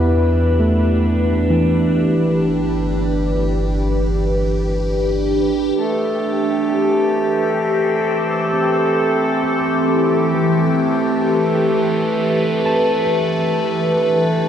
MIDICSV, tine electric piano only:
0, 0, Header, 1, 2, 480
1, 0, Start_track
1, 0, Key_signature, 0, "minor"
1, 0, Tempo, 909091
1, 1124, Time_signature, 4, 2, 24, 8
1, 7648, End_track
2, 0, Start_track
2, 0, Title_t, "Tine electric piano"
2, 0, Program_c, 0, 4
2, 0, Control_c, 0, 64, 127
2, 0, Note_on_c, 0, 59, 59
2, 0, Note_on_c, 0, 64, 52
2, 0, Note_on_c, 0, 79, 45
2, 106, Note_off_c, 0, 79, 0
2, 315, Note_on_c, 0, 57, 58
2, 414, Note_off_c, 0, 59, 0
2, 794, Note_on_c, 0, 52, 61
2, 894, Note_off_c, 0, 57, 0
2, 1132, Control_c, 0, 64, 0
2, 1714, Note_off_c, 0, 64, 0
2, 2904, Note_off_c, 0, 52, 0
2, 3136, Control_c, 0, 64, 127
2, 4503, Note_on_c, 0, 60, 60
2, 4553, Note_on_c, 0, 79, 47
2, 4972, Control_c, 0, 64, 0
2, 4982, Note_on_c, 0, 57, 65
2, 5069, Control_c, 0, 64, 127
2, 5078, Note_off_c, 0, 60, 0
2, 5250, Note_on_c, 0, 64, 51
2, 5462, Note_on_c, 0, 52, 68
2, 5557, Note_off_c, 0, 57, 0
2, 6660, Note_off_c, 0, 79, 0
2, 6683, Note_on_c, 0, 81, 58
2, 6890, Control_c, 0, 64, 0
2, 6972, Control_c, 0, 64, 127
2, 6981, Note_off_c, 0, 52, 0
2, 7357, Note_off_c, 0, 64, 0
2, 7648, Note_off_c, 0, 81, 0
2, 7648, End_track
0, 0, End_of_file